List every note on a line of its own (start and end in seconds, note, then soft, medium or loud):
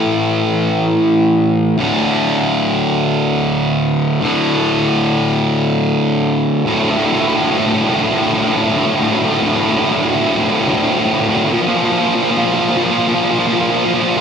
0.00 1.76 A2 medium
0.00 1.77 E3 medium
0.00 1.81 A3 medium
1.78 4.21 D2 medium
1.78 4.20 A2 medium
1.78 4.24 D3 medium
4.21 6.63 D2 medium
4.21 6.64 A2 medium
4.21 6.65 D3 medium
6.66 6.73 D2 medium
6.66 6.74 A2 medium
6.73 6.81 D2 soft
6.73 6.82 A2 soft
6.82 6.90 D2 medium
6.82 6.90 A2 medium
6.90 6.98 D2 soft
6.90 6.97 A2 medium
6.98 7.04 D2 medium
6.98 7.05 A2 medium
7.05 7.13 D2 soft
7.05 7.12 A2 medium
7.12 7.20 D2 medium
7.12 7.20 A2 medium
7.21 7.28 D2 medium
7.21 7.27 A2 medium
7.27 7.36 D2 medium
7.27 7.35 A2 medium
7.35 7.43 D2 medium
7.35 7.43 A2 medium
7.43 7.51 D2 medium
7.43 7.50 A2 medium
7.50 7.60 D2 soft
7.50 7.58 A2 medium
7.58 7.67 D2 medium
7.58 7.66 A2 medium
7.66 7.75 D2 medium
7.66 7.74 A2 medium
7.74 7.84 D2 medium
7.74 7.81 A2 medium
7.81 7.91 D2 medium
7.81 7.88 A2 medium
7.89 7.99 D2 medium
7.89 7.95 A2 medium
7.96 8.05 D2 medium
7.96 8.03 A2 medium
8.03 8.13 D2 medium
8.03 8.11 A2 medium
8.11 8.22 D2 soft
8.11 8.19 A2 medium
8.19 8.30 D2 medium
8.19 8.26 A2 medium
8.27 8.34 A2 medium
8.31 8.38 D2 soft
8.31 8.41 A2 medium
8.39 8.45 D2 medium
8.39 8.48 A2 medium
8.46 8.53 D2 medium
8.46 8.56 A2 medium
8.53 8.61 D2 medium
8.53 8.64 A2 medium
8.62 8.69 D2 soft
8.62 8.72 A2 medium
8.69 8.77 D2 medium
8.69 8.78 A2 medium
8.77 8.85 D2 soft
8.77 8.86 A2 medium
8.85 8.93 D2 medium
8.85 8.94 A2 medium
8.93 8.99 D2 soft
8.93 9.01 A2 medium
9.00 9.08 D2 medium
9.00 9.09 A2 medium
9.09 9.16 D2 medium
9.09 9.19 A2 medium
9.17 9.24 D2 medium
9.17 9.26 A2 soft
9.24 9.31 D2 medium
9.24 9.34 A2 medium
9.32 9.39 D2 medium
9.32 9.41 A2 medium
9.39 9.46 D2 medium
9.39 9.49 A2 medium
9.47 9.54 D2 medium
9.47 9.57 A2 medium
9.55 9.62 D2 medium
9.55 9.65 A2 medium
9.62 9.70 D2 medium
9.62 9.73 A2 medium
9.70 9.77 D2 medium
9.70 9.81 A2 medium
9.77 9.85 D2 medium
9.77 9.89 A2 medium
9.86 9.92 D2 medium
9.86 9.96 A2 medium
9.93 10.00 D2 medium
9.93 10.04 A2 medium
10.01 10.08 D2 medium
10.05 10.15 D2 medium
10.05 10.11 A2 medium
10.11 10.19 A2 medium
10.15 10.23 D2 medium
10.21 10.30 D2 medium
10.21 10.27 A2 medium
10.28 10.38 D2 medium
10.28 10.35 A2 medium
10.36 10.45 D2 medium
10.36 10.44 A2 medium
10.44 10.52 D2 medium
10.44 10.51 A2 medium
10.52 10.60 D2 medium
10.52 10.59 A2 medium
10.59 10.67 D2 medium
10.59 10.67 A2 medium
10.68 10.75 D2 medium
10.68 10.73 A2 medium
10.74 10.83 D2 medium
10.74 10.81 A2 medium
10.83 10.91 D2 medium
10.83 10.90 A2 medium
10.90 10.99 D2 medium
10.90 10.98 A2 medium
10.99 11.06 D2 medium
10.99 11.05 A2 medium
11.06 11.13 D2 medium
11.06 11.13 A2 medium
11.14 11.21 D2 medium
11.14 11.21 A2 medium
11.21 11.29 D2 medium
11.21 11.29 A2 medium
11.29 11.37 D2 medium
11.29 11.36 A2 medium
11.36 11.45 D2 medium
11.36 11.44 A2 medium
11.45 11.52 D2 soft
11.45 11.53 A2 medium
11.53 11.59 A#2 medium
11.53 11.61 F3 medium
11.60 11.67 A#2 soft
11.60 11.68 F3 medium
11.68 11.75 A#2 medium
11.68 11.76 F3 medium
11.75 11.83 A#2 soft
11.75 11.85 F3 medium
11.83 11.91 A#2 medium
11.83 11.92 F3 medium
11.92 11.99 A#2 soft
11.92 12.00 F3 medium
11.99 12.07 A#2 medium
11.99 12.08 F3 medium
12.07 12.14 A#2 medium
12.07 12.15 F3 medium
12.15 12.22 A#2 medium
12.15 12.23 F3 medium
12.23 12.30 A#2 medium
12.23 12.31 F3 medium
12.30 12.37 A#2 medium
12.30 12.38 F3 medium
12.37 12.45 A#2 medium
12.37 12.45 F3 medium
12.45 12.53 A#2 medium
12.45 12.53 F3 medium
12.53 12.60 A#2 medium
12.53 12.61 F3 medium
12.60 12.68 A#2 medium
12.60 12.69 F3 medium
12.69 12.76 A#2 medium
12.69 12.77 F3 medium
12.77 12.83 A#2 medium
12.77 12.85 F3 medium
12.83 12.91 A#2 medium
12.83 12.92 F3 medium
12.92 12.99 A#2 medium
12.92 12.99 F3 medium
12.99 13.07 A#2 medium
12.99 13.07 F3 medium
13.08 13.15 A#2 medium
13.08 13.15 F3 medium
13.15 13.23 A#2 medium
13.15 13.23 F3 medium
13.24 13.30 A#2 medium
13.24 13.31 F3 medium
13.31 13.38 A#2 soft
13.31 13.39 F3 medium
13.39 13.46 A#2 medium
13.39 13.47 F3 medium
13.47 13.52 A#2 medium
13.47 13.55 F3 medium
13.53 13.61 A#2 medium
13.53 13.62 F3 medium
13.61 13.69 A#2 soft
13.61 13.70 F3 medium
13.70 13.77 A#2 medium
13.70 13.77 F3 medium
13.77 13.85 A#2 soft
13.77 13.84 F3 medium
13.85 13.93 A#2 medium
13.85 13.92 F3 medium
13.94 14.00 A#2 medium
13.94 14.02 F3 medium
14.01 14.08 A#2 medium
14.01 14.09 F3 medium
14.08 14.16 A#2 medium
14.08 14.17 F3 medium
14.16 14.21 A#2 medium
14.16 14.21 F3 medium